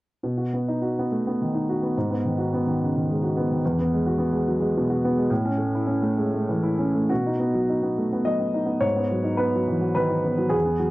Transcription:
0.23 B2
0.37 F#4
0.53 B3
0.68 D#4
0.82 F#4
0.99 B3
1.12 A3
1.27 B3
1.42 D#3
1.54 D#4
1.69 F#4
1.83 B3
1.97 G#2
2.11 B3
2.25 D#3
2.38 F#4
2.54 B3
2.67 D#3
2.82 C#3
2.96 D#3
3.10 G#3
3.23 F#4
3.37 B3
3.51 D#3
3.65 E2
3.79 B3
3.93 G#3
4.06 F#4
4.18 B3
4.32 G#3
4.48 F#3
4.60 G#3
4.77 B2
4.90 F#4
5.05 B3
5.17 G#3
5.30 A2
5.45 C#4
5.58 A3
5.75 E4
5.87 C#4
6.02 A3
6.17 G#3
6.34 A3
6.49 E3
6.63 E4
6.79 C#4
6.95 A3
7.09 B2 F#4
7.27 D#4
7.40 B3
7.54 F#3
7.70 D#4
7.83 B3
7.98 A3
8.13 B3
8.25 F#3 D#5
8.40 B3
8.54 D#4
8.66 B3
8.80 G#2 C#5
8.96 B3
9.11 F#3
9.24 D#4
9.37 B3 B4
9.55 F#3
9.68 E3
9.81 F#3
9.95 D#3 B4
10.09 D#4
10.24 B3
10.38 F#3
10.49 E2 G#4
10.65 B3
10.80 F#3

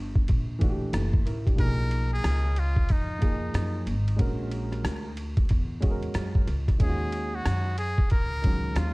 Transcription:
Already playing: G1
0.15 kick
0.28 A#1, kick, ride
0.59 E3 A3 D4, kick, ride
0.63 F#4
0.69 G4
0.93 F#1 E4, cross-stick, hi-hat pedal, ride
1.14 kick
1.26 A1 E4 A#4, ride
1.46 D4 G4, kick, ride
1.56 B1 F3 A#3 D#4, kick, ride
1.60 G#4 A#4
1.91 ride
2.13 G#4
2.24 C#2, cross-stick, hi-hat pedal, ride
2.56 F4, ride
2.76 kick
2.89 F2 D#4, kick, ride
3.19 F3 A#3 D#4 G#4, kick, ride
3.54 F#2, cross-stick, hi-hat pedal, ride
3.86 G#1, ride
4.08 ride
4.17 A#1 G#3 C#4 F#4, kick, ride
4.21 A#4
4.51 ride
4.72 cross-stick, ride
4.84 D2, cross-stick, hi-hat pedal, ride
5.17 ride
5.37 kick, ride
5.49 E2, kick, ride
5.80 G#3 C#4 F#4 G#4, kick, ride
5.91 A#4
6.03 ride
6.14 F#2, cross-stick, hi-hat pedal, ride
6.35 kick
6.47 C#2, cross-stick, ride
6.68 kick, cross-stick, ride
6.78 D#2 D#3 G#3 C#4 F4, kick, ride
6.83 G#4
6.89 F#4
7.12 ride
7.35 F#4
7.46 F#2, cross-stick, hi-hat pedal, ride
7.78 G#4, ride
7.98 muted upright bass stroke, kick
8.10 C#2 A#4, kick, ride
8.42 D#3 G#3 C#4, kick, ride
8.46 F#3
8.75 D#2 F4, cross-stick, hi-hat pedal, ride

